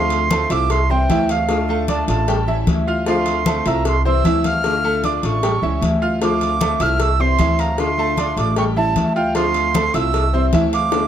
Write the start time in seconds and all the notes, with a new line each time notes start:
Already playing: D2 D3 F3 A3 C4 F4 F5 C6
0.10 cowbell, high conga
0.30 D3 A3 C4 F4 A4 A5, cowbell, high conga
0.50 C2 A3 C4 E4 F4 E5 D6 E6, cowbell, high conga
0.70 C6, muted steel-string acoustic guitar stroke, cowbell, high conga
0.89 E3 G3 C4 E4 C5 G5 C6, high conga
1.09 D2 E3 G3 C4 E4 E5, cowbell, high conga
1.29 F5, cowbell
1.49 D3 A3 D4 F4, cowbell, high conga
1.69 A3 A4 A5, high conga
1.88 D3 A3 D4 F4 D5 A5 D6, cowbell, high conga
2.08 A1 A3 D4 F4 A5, cowbell, high conga
2.28 G3 G4 G5, muted steel-string acoustic guitar stroke, cowbell, high conga
2.47 E3 G3 C#4 E4 E5, high conga
2.67 D2 E3 G3 C#4 E4, cowbell, high conga
2.87 F4 F5 F6
3.06 D3 F3 A3 C4 F4 F5 C6, cowbell, high conga
3.26 cowbell, high conga
3.46 D3 A3 C4 F4 A4 A5, cowbell, high conga
3.66 C2 A3 C4 E4 F4 E5 A#5 E6, cowbell, high conga
3.85 C6, muted steel-string acoustic guitar stroke, cowbell, high conga
4.05 E3 G3 C4 E4 C5 C6 E6, high conga
4.24 D2 E3 C4 E4 E5, cowbell, high conga
4.44 F5 F6, cowbell, high conga
4.64 D3 A3 D4 F4, cowbell, high conga
4.84 A3 A4 A5, high conga
5.04 D3 A3 D4 F4 D5 D6, cowbell, high conga
5.17 D6
5.23 A1 A3 D4 F4 C#6, cowbell, high conga
5.43 G3 G4 G5, muted steel-string acoustic guitar stroke, cowbell, high conga
5.62 C#2 E3 G3 C#4 E4 E5, high conga
5.81 D2 E3 G3 C#4 E4, cowbell, high conga
6.02 F4 F5 F6
6.21 D3 F3 A3 C4 F4 F5 D6, cowbell, high conga
6.41 cowbell, high conga
6.60 D3 A3 C4 F4 A4 A5, cowbell, high conga
6.80 C2 A3 C4 E4 F4 E5 E6 F6, cowbell, high conga
7.00 E6, muted steel-string acoustic guitar stroke, cowbell, high conga
7.19 E3 G3 C4 E4 C5 C6, high conga
7.39 D2 E3 G3 C4 E4 E5, cowbell, high conga
7.59 F5 A#5, cowbell
7.78 D3 A3 D4 F4 C6, cowbell, high conga
7.98 A3 A4 A5, high conga
8.17 D3 A3 D4 F4 D5 D6, cowbell, high conga
8.36 A1 A3 D4 F4 D6, cowbell, high conga
8.56 G3 G4 G5 C#6, muted steel-string acoustic guitar stroke, cowbell, high conga
8.76 E3 G3 C#4 E4 E5 A5, high conga
8.96 D2 E3 G3 C#4 E4, cowbell, high conga
9.15 F4 F5 G5 F6
9.35 D3 F3 A3 C4 F4 F5 C6, cowbell, high conga
9.54 cowbell, high conga
9.74 D3 A3 C4 F4 A4 A5, cowbell, high conga
9.94 C2 A3 C4 E4 F4 E5 E6, cowbell, high conga
10.13 muted steel-string acoustic guitar stroke, cowbell, high conga
10.33 E3 G3 C4 E4 C5 C6, high conga
10.53 D2 E3 C4 E4 E5, cowbell, high conga
10.73 F5 D6, cowbell
10.92 D3 A3 D4 F4, cowbell, high bongo, high conga